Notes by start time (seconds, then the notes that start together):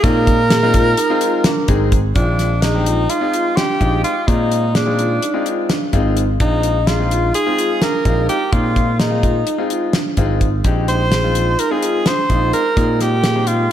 0.03 A#2 G#3 C4 D#4 F4 A#4, kick, closed hi-hat
0.27 kick, closed hi-hat
0.50 G#4, snare, closed hi-hat
0.63 G#3 C4 D#4 F4
0.74 F4, kick, closed hi-hat
0.97 D#4, closed hi-hat
1.10 G#3 C4 D#4 F4
1.21 F4, closed hi-hat
1.44 D4, snare, closed hi-hat
1.68 G#1 G#3 C4 D#4 G#4, kick, closed hi-hat
1.92 kick, closed hi-hat
2.15 A#1 D#3 G#3 C4 D4 F4, kick, closed hi-hat
2.39 snare, closed hi-hat
2.62 D#4 G#4, snare, closed hi-hat
2.75 G#3 C4 D#4 G4
2.86 F4, closed hi-hat
3.10 D#4 F4, closed hi-hat
3.21 G#3 C4 D#4 F4
3.34 F4, closed hi-hat
3.56 D4 G4, snare, closed hi-hat
3.81 A#1 G#3 C4 D#4 F4, kick, closed hi-hat
4.04 F4, closed hi-hat
4.27 A#2 G#3 C4 D#4 F4, kick, closed hi-hat
4.52 closed hi-hat
4.75 D4 G#4, snare, closed hi-hat
4.86 G#3 C4 D#4 F4
4.99 F4, closed hi-hat
5.22 D#4, closed hi-hat
5.34 G#3 C4 D#4 F4
5.46 F4, closed hi-hat
5.69 D4, snare, closed hi-hat
5.93 G#1 G#3 C4 D#4 F4, kick, closed hi-hat
6.17 closed hi-hat
6.40 A#1 G#3 C4 D#4 F4, kick, closed hi-hat
6.63 closed hi-hat
6.87 F4 G#4, snare, closed hi-hat
6.99 G#3 C4 D#4 F4
7.11 F4, closed hi-hat
7.34 D#4 G#4, closed hi-hat
7.46 G#3 C4 D#4 F4
7.58 F4, closed hi-hat
7.82 D4 A#4, snare, closed hi-hat
8.05 A#1 G#3 C4 D#4 F4, kick, closed hi-hat
8.29 G4, closed hi-hat
8.52 A#2 G#3 C4 D#4 F4, kick, closed hi-hat
8.76 kick, closed hi-hat
9.00 D#4 G#4, snare, closed hi-hat
9.10 G#3 C4 D#4 F4
9.23 F4, kick, closed hi-hat
9.47 D#4, closed hi-hat
9.58 G#3 C4 D#4 F4
9.70 F4, closed hi-hat
9.93 D4, snare, closed hi-hat
10.17 G#1 G#3 C4 D#4 F4, kick, closed hi-hat
10.41 kick, closed hi-hat
10.64 A#1 G#3 C4 D#4 G4, kick, closed hi-hat
10.88 C5, closed hi-hat
11.12 G#4, snare, closed hi-hat
11.23 G#3 C4 D#4 F4
11.35 F4, closed hi-hat
11.59 D#4 A#4, closed hi-hat
11.71 G#3 C4 D#4 F4 G#4
11.83 F4, closed hi-hat
12.06 D4 C5, snare, closed hi-hat
12.30 A#1 G#3 C4 D#4 F4, kick, closed hi-hat
12.53 A#4, closed hi-hat
12.77 A#2 G#3 C4 D#4 F4, kick, closed hi-hat
13.01 G4, snare, closed hi-hat
13.24 G#4, snare, closed hi-hat
13.36 G#3 C4 D#4 G4
13.47 F4, closed hi-hat